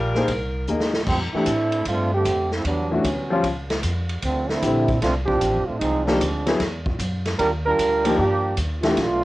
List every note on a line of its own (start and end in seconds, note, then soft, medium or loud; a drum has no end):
0.00 0.27 A#1 medium
0.00 0.30 G3 medium
0.00 0.30 D4 medium
0.00 0.30 F4 medium
0.00 0.95 A#4 medium
0.15 0.27 A#3 medium
0.15 0.28 D#4 medium
0.15 0.28 G#4 medium
0.15 0.28 C5 medium
0.15 snare soft
0.27 0.66 C2 medium
0.27 kick soft
0.27 ride medium
0.67 1.06 D#2 medium
0.67 0.92 A#3 medium
0.67 0.92 D#4 soft
0.67 0.92 G#4 soft
0.67 0.92 D#5 medium
0.67 hi-hat pedal soft
0.80 snare medium
0.93 snare medium
1.06 1.31 F2 medium
1.06 1.19 D3 medium
1.06 1.20 G3 medium
1.06 1.19 A3 medium
1.06 1.20 C4 medium
1.06 kick medium
1.06 crash medium
1.34 1.46 E3 medium
1.34 1.83 A3 medium
1.34 1.46 A3 medium
1.34 1.83 C4 medium
1.34 1.83 D4 medium
1.34 1.46 D4 medium
1.34 1.83 E4 loud
1.34 1.47 G4 medium
1.34 muted upright bass stroke soft
1.46 1.84 A2 medium
1.46 kick soft
1.46 hi-hat pedal medium
1.46 ride medium
1.72 ride soft
1.85 2.24 G2 medium
1.85 2.13 A3 medium
1.85 2.13 C4 medium
1.85 2.13 D4 medium
1.85 2.13 F4 loud
1.85 kick soft
1.85 ride medium
2.14 2.50 D3 medium
2.14 2.50 A3 medium
2.14 2.50 C4 medium
2.14 2.50 G4 loud
2.25 2.64 F2 medium
2.25 kick soft
2.25 hi-hat pedal medium
2.25 ride medium
2.51 2.66 F3 medium
2.51 2.66 A3 medium
2.51 2.66 C4 medium
2.51 2.66 E4 medium
2.51 snare soft
2.64 3.03 E2 medium
2.64 2.90 F#3 medium
2.64 2.90 G3 medium
2.64 2.90 B3 medium
2.64 2.90 D4 medium
2.64 kick soft
2.64 ride medium
2.91 3.03 E3 medium
2.91 3.45 F#3 medium
2.91 3.45 G3 medium
2.91 3.04 A3 medium
2.91 3.46 B3 medium
2.91 3.45 C#4 medium
2.91 3.04 D4 medium
2.91 3.05 F#4 medium
3.04 3.43 D2 medium
3.04 kick soft
3.04 hi-hat pedal medium
3.04 ride medium
3.30 3.43 F3 medium
3.30 3.43 G3 medium
3.30 3.44 C#4 medium
3.30 3.44 F4 medium
3.43 3.82 C#2 medium
3.43 kick soft
3.43 ride medium
3.70 snare medium
3.70 ride soft
3.83 4.22 F2 medium
3.83 kick soft
3.83 hi-hat pedal medium
3.83 ride medium
4.09 ride soft
4.22 4.61 D2 loud
4.22 4.48 D3 medium
4.22 4.49 F3 medium
4.22 4.48 A3 medium
4.22 4.48 C4 medium
4.22 kick soft
4.22 ride medium
4.49 5.00 A3 medium
4.49 5.00 C4 medium
4.49 5.01 D4 medium
4.49 5.03 E4 medium
4.49 snare soft
4.62 5.01 A#1 medium
4.62 4.86 D3 medium
4.62 4.87 G3 medium
4.62 4.87 C4 soft
4.62 4.87 E4 medium
4.62 kick soft
4.62 hi-hat pedal medium
4.62 ride medium
4.88 kick medium
4.88 ride soft
5.02 5.41 C2 medium
5.02 5.13 A3 medium
5.02 5.14 C4 loud
5.02 5.14 D4 loud
5.02 5.14 F4 loud
5.02 kick soft
5.02 snare soft
5.02 ride medium
5.26 5.64 F3 medium
5.26 5.64 C4 medium
5.26 5.64 D4 medium
5.26 5.64 G4 loud
5.26 kick medium
5.41 5.57 A1 medium
5.41 kick soft
5.41 hi-hat pedal medium
5.41 ride medium
5.56 5.68 F1 medium
5.65 5.81 D1 medium
5.65 5.81 A3 medium
5.65 5.79 C4 medium
5.65 5.80 D4 medium
5.65 5.80 F4 medium
5.79 6.20 C2 medium
5.79 6.05 F3 medium
5.79 6.05 G#3 medium
5.79 6.05 C4 medium
5.79 6.04 D#4 loud
5.79 kick soft
5.79 ride medium
6.06 6.60 F3 medium
6.06 6.20 F3 medium
6.06 6.60 G#3 medium
6.06 6.20 A#3 medium
6.06 6.60 C4 medium
6.06 6.60 D4 medium
6.06 6.20 D#4 medium
6.06 6.20 G4 medium
6.06 snare medium
6.21 6.59 D2 medium
6.21 kick soft
6.21 hi-hat pedal medium
6.21 ride medium
6.46 6.59 F#3 medium
6.46 6.59 B3 medium
6.46 6.59 E4 medium
6.46 6.60 G#4 medium
6.46 snare soft
6.46 ride soft
6.60 6.98 E2 medium
6.60 kick soft
6.60 snare soft
6.60 ride medium
6.86 kick medium
6.99 7.38 F#2 medium
6.99 kick soft
6.99 hi-hat pedal medium
6.99 ride medium
7.25 snare soft
7.25 ride soft
7.39 7.78 D#2 medium
7.39 7.51 G3 medium
7.39 7.51 D4 medium
7.39 7.51 F4 medium
7.39 7.51 A#4 loud
7.39 kick soft
7.39 ride medium
7.66 8.15 G3 medium
7.66 8.15 D4 medium
7.66 8.15 F4 medium
7.66 8.15 A#4 loud
7.78 8.17 D2 medium
7.78 kick soft
7.78 hi-hat pedal medium
7.78 ride medium
8.04 8.17 F3 medium
8.04 8.17 A#3 medium
8.04 8.17 D#4 medium
8.04 8.18 G4 medium
8.04 ride medium
8.18 8.56 G2 medium
8.18 8.55 F3 medium
8.18 8.55 A#3 loud
8.18 8.55 D4 loud
8.18 8.55 G4 loud
8.18 kick soft
8.57 8.96 D#2 medium
8.57 kick soft
8.57 hi-hat pedal medium
8.57 ride medium
8.81 8.95 E3 medium
8.81 9.24 A3 medium
8.81 8.96 A3 medium
8.81 9.24 B3 medium
8.81 9.24 D4 loud
8.81 8.96 D4 medium
8.81 9.24 F4 loud
8.81 snare medium
8.81 ride medium
8.85 8.97 G4 medium
8.97 9.24 B1 medium
8.97 kick soft
8.97 snare soft
8.97 ride medium